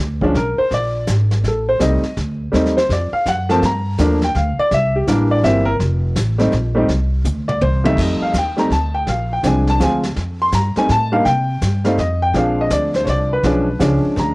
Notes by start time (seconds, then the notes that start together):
Already playing: D2
0.21 F3 G#3 C#4 D4, kick
0.34 B1 A#4, brush sweep, kick, snare
0.58 C5, muted upright bass stroke
0.71 A#1 D5, kick, snare
1.07 G#1, kick, snare, hi-hat pedal
1.31 snare
1.44 A1, brush sweep, kick, snare
1.48 A4
1.69 C5
1.79 C2 G3 A3 C4 D#4 D#5, kick, snare, hi-hat pedal
2.03 snare
2.17 D2, kick, snare
2.52 D#2 G3 A3 C4 D#4, brush sweep, kick, snare
2.66 snare
2.77 C5, snare
2.89 F2 D5, kick, snare
3.12 F5, muted upright bass stroke
3.26 F#2 F#5, kick, snare, hi-hat pedal
3.49 F3 A3 A#3 C4 A5, snare
3.62 G2 A#5, brush sweep, kick, snare
3.98 D#2 F3 A3 A#3 D4, kick, snare, hi-hat pedal
4.22 G5, snare
4.35 D2 F5, kick, snare
4.57 D5, muted upright bass stroke
4.71 C2 E5, brush sweep, kick, snare
4.96 G4
5.07 A1 E3 G3 A#3 D4 A#4, kick, snare, hi-hat pedal
5.31 D5
5.43 G1 E3 G3 A#3 C4 E5, kick, snare
5.65 A#4
5.80 F1, brush sweep, kick, snare
6.16 A1, kick, snare, hi-hat pedal
6.38 G3 A3 C4 D#4, snare
6.52 A#1, kick, snare
6.75 G3 A3 C4 D#4
6.88 C2, brush sweep, kick, snare
7.24 D2, hi-hat pedal, high tom
7.48 D5, mid tom
7.61 C2 C5, high tom
7.84 F2 G3 A3 C4 D#4 E5, high tom
7.97 F2 D#5, brush sweep, kick, snare, crash
8.20 F5, muted upright bass stroke
8.34 D#2, kick, snare, hi-hat pedal
8.38 G5
8.57 G3 A3 C4 D#4 A#5, snare
8.70 D2 A5, kick, snare
8.95 G5
9.07 A#1 F5, brush sweep, kick, snare
9.33 G5
9.43 C2 F3 G#3 C4 D4 G#5, kick, snare, hi-hat pedal
9.67 A5, snare
9.80 D2 F3 G#3 C4 F4 G#5, kick, snare, hi-hat pedal
10.03 snare
10.16 F2, brush sweep, kick, snare
10.42 C6
10.52 G2 A#5, kick, snare, hi-hat pedal
10.76 G3 A3 C4 D#4 G#5, muted upright bass stroke, snare
10.89 A2 A5, kick, snare
11.12 G3 A#3 D4 D#4 F5
11.25 C3 G5, brush sweep, kick, snare
11.61 G2, kick, snare, hi-hat pedal
11.85 G3 A3 C4 D#4 F5, snare
11.98 F2 D#5, kick, snare
12.22 G5
12.33 A#1 F3 G#3 C4 D4 F5, brush sweep, kick, snare
12.61 D#5
12.70 D2 D5, kick, snare, hi-hat pedal
12.94 C5, snare
13.05 C2 C#5, kick, snare
13.09 D5
13.33 B4
13.43 B1 F3 G#3 C#4 D4, brush sweep, kick, snare
13.79 C#2 F3 G#3 C#4 D4, kick, snare, hi-hat pedal
14.04 muted upright bass stroke
14.16 D2 A#5, kick, snare